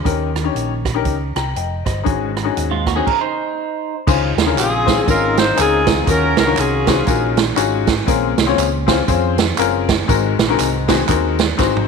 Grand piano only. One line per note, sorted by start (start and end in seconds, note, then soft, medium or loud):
0.05 0.81 D#3 medium
0.05 0.28 C#4 medium
0.05 0.28 D#4 medium
0.05 0.28 G4 medium
0.05 0.29 A#4 medium
0.43 0.70 C#4 medium
0.43 0.70 D#4 medium
0.43 0.71 G4 medium
0.43 0.71 C#5 medium
0.94 1.13 C#4 medium
0.94 1.13 D#4 medium
0.94 1.14 G4 medium
0.94 1.14 A#4 medium
1.36 1.55 G5 soft
1.36 1.55 A#5 medium
1.56 1.83 D#5 soft
1.56 1.85 G5 medium
1.85 2.34 C5 soft
1.85 2.33 D#5 medium
2.03 2.82 G#2 medium
2.03 2.28 C#4 medium
2.03 2.28 D#4 medium
2.03 2.28 F#4 medium
2.03 2.28 G#4 medium
2.43 2.70 C#4 medium
2.43 2.71 D#4 medium
2.43 2.71 F#4 medium
2.43 2.71 G#4 medium
2.95 3.06 C#4 medium
2.95 3.06 D#4 medium
2.95 3.07 F#4 medium
2.95 3.07 G#4 medium
4.07 4.84 C#3 medium
4.07 4.30 C#4 medium
4.07 4.30 D#4 medium
4.07 4.30 F4 medium
4.07 4.30 G#4 medium
4.07 4.31 C5 loud
4.45 4.64 C#4 medium
4.45 4.65 D#4 medium
4.45 4.65 F4 medium
4.45 4.65 G#4 medium
4.45 4.65 A#4 medium
4.85 4.97 C#4 medium
4.85 4.97 D#4 medium
4.85 4.97 F4 medium
4.85 4.97 G#4 medium
4.85 4.97 C5 medium
5.06 5.37 C#4 medium
5.06 5.37 D#4 medium
5.06 5.37 F4 medium
5.06 5.38 G#4 medium
5.06 5.38 A#4 medium
5.56 5.87 C#4 medium
5.56 5.87 D#4 medium
5.56 5.87 F4 medium
5.56 5.87 G#4 medium
5.56 5.88 A#4 medium
6.06 6.83 D#3 medium
6.06 6.30 C#4 medium
6.06 6.30 D#4 medium
6.06 6.30 F4 medium
6.06 6.30 F#4 medium
6.06 6.30 A#4 medium
6.46 6.65 C#4 medium
6.46 6.65 D#4 medium
6.46 6.65 F4 medium
6.46 6.65 F#4 medium
6.46 6.66 A#4 medium
6.86 6.97 C#4 medium
6.86 6.98 D#4 medium
6.86 6.98 F4 medium
6.86 6.98 F#4 medium
6.86 6.98 C5 medium
7.06 7.37 C#4 medium
7.06 7.37 D#4 medium
7.06 7.38 F4 medium
7.06 7.38 F#4 medium
7.06 7.38 A#4 medium
7.56 7.87 C#4 medium
7.56 7.87 D#4 medium
7.56 7.87 F4 medium
7.56 7.87 F#4 medium
7.56 7.88 G#4 medium
8.06 8.84 A#2 medium
8.06 8.30 C4 medium
8.06 8.30 C#4 medium
8.06 8.31 F4 medium
8.06 8.31 G#4 medium
8.06 8.31 A#4 loud
8.46 8.65 C4 medium
8.46 8.65 C#4 medium
8.46 8.65 F4 medium
8.46 8.65 G#4 medium
8.46 8.66 C#5 loud
8.87 8.98 C4 medium
8.87 8.98 C#4 medium
8.87 8.98 F4 medium
8.87 8.98 G#4 medium
8.87 8.99 C5 loud
9.08 9.38 C4 medium
9.08 9.38 C#4 medium
9.08 9.38 F4 medium
9.08 9.39 G#4 medium
9.08 9.39 C5 medium
9.57 9.88 C4 medium
9.57 9.88 C#4 medium
9.57 9.88 F4 medium
9.57 9.89 G#4 medium
9.57 9.89 A#4 loud
10.08 10.85 G#2 medium
10.08 10.31 C4 medium
10.08 10.31 D#4 medium
10.08 10.31 F#4 medium
10.08 10.31 G#4 medium
10.08 10.32 A#4 loud
10.49 10.66 C4 medium
10.49 10.67 D#4 medium
10.49 10.67 F#4 medium
10.49 10.67 G#4 medium
10.49 10.67 A#4 loud
10.88 10.99 C4 medium
10.88 10.99 D#4 medium
10.88 10.99 F#4 medium
10.88 10.99 G#4 medium
10.88 11.00 C5 medium
11.07 11.38 C4 medium
11.07 11.38 D#4 medium
11.07 11.39 F#4 medium
11.07 11.39 G#4 medium
11.07 11.40 A#4 medium
11.57 11.88 C4 medium
11.57 11.88 D#4 medium
11.57 11.88 F#4 medium
11.57 11.88 G#4 medium
11.57 11.88 C5 medium